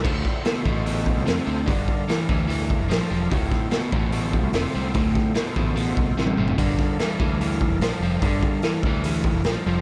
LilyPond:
<<
  \new Staff \with { instrumentName = "Tonewheel organ" } { \time 4/4 \key d \minor \tempo 4 = 147 << { <b' c''>8 r2. r8 | r1 | r1 | r1 |
r1 | r1 | } \\ { <e' f' a' c''>1 | \tuplet 3/2 { <ees' fis' bes' b'>8 <d' a' bes' f''>4~ } <d' a' bes' f''>2. | \tuplet 3/2 { <f' fis' bes' cis''>8 <e' f' a' c''>4~ } <e' f' a' c''>2.~ | <e' f' a' c''>1 |
<d' a' bes' f''>1~ | <d' a' bes' f''>1 | } >> }
  \new Staff \with { instrumentName = "Overdriven electric guitar" } { \clef bass \time 4/4 \key d \minor <d, a,>4 <d, b,>8 <d, b,>8 <d, b,>4 <d, c>8 <d, c>8 | <g, d>4 <g, e>8 <g, e>8 <g, e>4 <g, f>8 <g, f>8 | <d, a,>4 <d, b,>8 <d, b,>8 <d, b,>4 <d, c>8 <d, c>8 | <d, a,>4 <d, b,>8 <d, b,>8 <d, b,>4 <d, c>8 <d, c>8 |
<g, d>4 <g, e>8 <g, e>8 <g, e>4 <g, f>8 <g, f>8 | <g, d>4 <g, e>8 <g, e>8 <g, e>4 <g, f>8 <g, f>8 | }
  \new Staff \with { instrumentName = "Fingered electric bass" } { \clef bass \time 4/4 \key d \minor d,8 r4 a,,4~ a,,16 c,16 f,16 r16 d,8 | g,,8 r4 d,4~ d,16 f,,16 bes,,16 r16 e,,8 | d,,8 r4 a,,4~ a,,16 c,16 f,,16 r16 c,8 | d,,8 r4 a,,4 c,8 a,,8 g,,8 |
g,,8 r4 d,4~ d,16 f,,16 bes,,16 r16 f,,8 | g,,8 r4 d,4~ d,16 f,,16 bes,,16 r16 f,,8 | }
  \new DrumStaff \with { instrumentName = "Drums" } \drummode { \time 4/4 <cymc bd>8 <bd sn>8 <hho sn>8 bd8 hho8 bd8 <hho sn>4 | <hho bd>8 bd8 <hho sn>8 bd8 hho8 bd8 <hho sn>4 | <hho bd>8 <bd sn>8 <hho sn>8 bd8 hho8 bd8 <hho sn>4 | <hho bd>8 <bd sn>8 <hho sn>8 bd8 hho8 bd8 sn16 tommh16 toml16 tomfh16 |
<cymc hho bd>8 <bd sn>8 <hho sn>8 bd8 hho8 bd8 <hho sn>4 | <hho bd>8 bd8 <hho sn>8 bd8 hho8 bd8 <hho sn>4 | }
>>